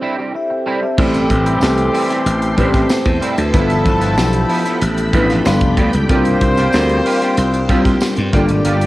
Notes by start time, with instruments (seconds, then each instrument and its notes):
Already playing: fm electric piano C4 D4 E4 G4 A4 C5
0.01 clean electric guitar G3 C4 E4
0.18 clean electric guitar G3 C4 G4
0.34 fm electric piano G4 E5, muted clean electric guitar stroke
0.50 fm electric piano G5, muted clean electric guitar stroke
0.66 clean electric guitar G3 C4 E4, fm electric piano C5 A5
0.82 fm electric piano G4 E5, muted clean electric guitar stroke
0.98 slap bass A1, horn section E3 C4 G4, clean electric guitar G3 C4 E4, fm electric piano A3 C4 E4 G4 A4, string machine A4 E5 G5 C6, kick, crash
1.14 closed hi-hat
1.30 slap bass A1, muted clean electric guitar stroke, kick, closed hi-hat
1.45 clean electric guitar G3 C4 E4, closed hi-hat
1.61 slap bass C2, fm electric piano A3 C4 E4 G4 A4, muted clean electric guitar stroke, snare, tambourine
1.78 muted clean electric guitar stroke, closed hi-hat
1.93 clean electric guitar G3 C4 E4, open hi-hat
2.09 clean electric guitar G3 C4 E4, snare, closed hi-hat
2.25 slap bass A1, muted clean electric guitar stroke, closed hi-hat
2.41 muted clean electric guitar stroke, closed hi-hat
2.57 slap bass A1, clean electric guitar G3 C4 E4, fm electric piano A3 C4 E4 G4 B4, kick, closed hi-hat
2.65 fm electric piano C5
2.73 clean electric guitar G3 C4 E4, kick, snare, closed hi-hat
2.89 snare, tambourine
3.05 slap bass E2, muted clean electric guitar stroke, kick, closed hi-hat
3.21 clean electric guitar G3 C4 E4, closed hi-hat
3.37 slap bass D2, muted clean electric guitar stroke, closed hi-hat
3.53 slap bass G1, clean electric guitar F3 B3 E4, fm electric piano F3 B3 D4 E4 A4, horn section F3 E4 A4, string machine G5 B5, kick, closed hi-hat
3.70 closed hi-hat
3.85 slap bass G1, muted clean electric guitar stroke, kick, closed hi-hat
4.01 clean electric guitar F3 B3 E4, snare, closed hi-hat
4.17 slap bass B1, fm electric piano F3 B3 D4 E4 G4, muted clean electric guitar stroke, snare, tambourine
4.33 muted clean electric guitar stroke, closed hi-hat
4.49 clean electric guitar F3 B3 E4, open hi-hat
4.65 clean electric guitar F3 B3 E4, snare, closed hi-hat
4.82 slap bass A1, muted clean electric guitar stroke, closed hi-hat
4.98 muted clean electric guitar stroke, closed hi-hat
5.13 slap bass A1, clean electric guitar F3 B3 E4, fm electric piano F3 B3 D4 E4 B4, kick, closed hi-hat
5.29 clean electric guitar F3 B3 F4, snare, closed hi-hat
5.45 slap bass G1, fm electric piano G3 B3 D4 F4 G4, horn section G3 F4 B4, string machine G4 D5, muted clean electric guitar stroke, snare, tambourine
5.53 fm electric piano A4
5.61 slap bass F1, muted clean electric guitar stroke, kick, closed hi-hat
5.77 slap bass D2, clean electric guitar B3 F4 G4, kick, closed hi-hat
5.93 slap bass C#2, muted clean electric guitar stroke, closed hi-hat
6.08 slap bass C2, fm electric piano G3 C4 D4 F4 A#4, horn section G3 F4 C5, clean electric guitar A#3 F4 G4, string machine C5, kick, closed hi-hat
6.25 closed hi-hat
6.41 slap bass C2, muted clean electric guitar stroke, kick, closed hi-hat
6.57 clean electric guitar A#3 F4 G4, snare, closed hi-hat
6.73 slap bass D2, fm electric piano G3 C4 D4 F4 A#4, muted clean electric guitar stroke, snare, tambourine
6.89 muted clean electric guitar stroke, closed hi-hat
7.05 clean electric guitar A#3 F4 G4, open hi-hat
7.21 clean electric guitar A#3 F4 G4, snare, closed hi-hat
7.37 slap bass C2, muted clean electric guitar stroke, closed hi-hat
7.53 muted clean electric guitar stroke, closed hi-hat
7.68 slap bass C2, fm electric piano G3 C4 D4 F4 G4, clean electric guitar A#3 F4 G4, kick, closed hi-hat
7.85 clean electric guitar A#3 F4 G4, kick, snare, closed hi-hat
8.01 snare, tambourine
8.17 slap bass G2, muted clean electric guitar stroke, closed hi-hat
8.32 slap bass G1, fm electric piano G3 A#3 D4 F4 A4, clean electric guitar A#3 F4 G4, horn section A#3 G4 D5, string machine G4 D5 F5, kick, closed hi-hat
8.48 slap bass G#1, muted clean electric guitar stroke, closed hi-hat
8.65 slap bass G1, clean electric guitar A#3 F4 G4, closed hi-hat
8.81 closed hi-hat